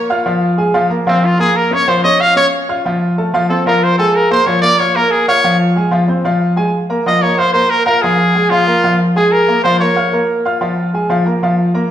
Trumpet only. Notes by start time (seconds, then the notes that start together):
1.08 C4
1.25 F4
1.40 G#4
1.56 A#4
1.73 C#5
1.89 C5
2.04 D#5
2.21 F5
2.37 C#5
3.49 A4
3.67 A#4
3.83 C5
3.98 A4
4.15 A#4
4.31 C5
4.46 C#5
4.61 D5
4.79 C#5
4.96 A#4
5.11 G#4
5.28 C#5
7.07 D#5
7.22 C#5
7.38 C5
7.53 C5
7.70 A#4
7.86 A#4
8.02 G#4
8.50 F4
9.16 G#4
9.32 A#4
9.63 C5
9.80 C#5